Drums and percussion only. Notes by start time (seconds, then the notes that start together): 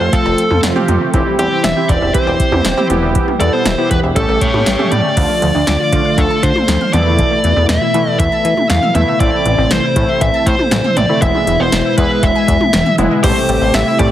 0.13 kick, closed hi-hat
0.38 closed hi-hat
0.51 mid tom
0.63 snare, closed hi-hat
0.76 mid tom
0.88 closed hi-hat, mid tom
1.14 kick, closed hi-hat
1.39 closed hi-hat
1.64 snare, closed hi-hat
1.89 kick, closed hi-hat
2.14 kick, closed hi-hat
2.40 kick, closed hi-hat
2.52 mid tom
2.65 snare, closed hi-hat
2.78 mid tom
2.90 closed hi-hat, mid tom
3.15 kick, closed hi-hat
3.28 mid tom
3.40 closed hi-hat
3.66 snare, closed hi-hat
3.91 kick, closed hi-hat
4.16 kick, closed hi-hat
4.41 kick, closed hi-hat
4.54 mid tom
4.66 snare, closed hi-hat
4.79 mid tom
4.92 closed hi-hat, mid tom
5.17 kick, closed hi-hat, crash
5.42 closed hi-hat
5.67 snare, closed hi-hat
5.93 kick, closed hi-hat
6.18 kick, closed hi-hat
6.43 kick, closed hi-hat
6.56 mid tom
6.68 snare, closed hi-hat
6.81 mid tom
6.93 closed hi-hat, mid tom
7.19 kick, closed hi-hat
7.44 closed hi-hat
7.69 snare, closed hi-hat
7.94 closed hi-hat
8.19 kick, closed hi-hat
8.45 closed hi-hat
8.57 mid tom
8.70 snare, closed hi-hat
8.83 mid tom
8.95 closed hi-hat, mid tom
9.20 kick, closed hi-hat
9.46 closed hi-hat
9.71 snare, closed hi-hat
9.96 kick, closed hi-hat
10.21 kick, closed hi-hat
10.46 kick, closed hi-hat
10.59 mid tom
10.71 snare, closed hi-hat
10.84 mid tom
10.97 closed hi-hat, mid tom
11.22 kick, closed hi-hat
11.35 mid tom
11.47 closed hi-hat
11.72 snare, closed hi-hat
11.98 kick, closed hi-hat
12.23 kick, closed hi-hat
12.48 kick, closed hi-hat
12.61 mid tom
12.73 snare, closed hi-hat
12.86 mid tom
12.98 closed hi-hat, mid tom
13.24 kick, closed hi-hat, crash
13.49 closed hi-hat
13.74 snare, closed hi-hat
13.99 kick, closed hi-hat, cowbell